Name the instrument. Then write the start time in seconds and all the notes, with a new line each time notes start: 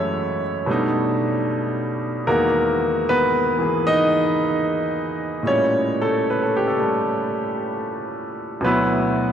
grand piano
Already playing: F#2 E3 G#3 A3 C#4 C#5
0.66 B2 G3 A3 D4
0.71 D#4
2.27 E2 D#3 G#3 A#3 F#4 A#4
3.09 B3 B4
3.58 E3 B3 G#4
3.87 D#4 D#5
5.43 A2 A#2 G3
5.47 C#4 C#5
6.02 A3 A4
6.30 B4
6.42 A4
6.57 G4
6.67 A4
6.77 G3 A3
8.61 D2 B2 F#3 B4
8.66 B3 E4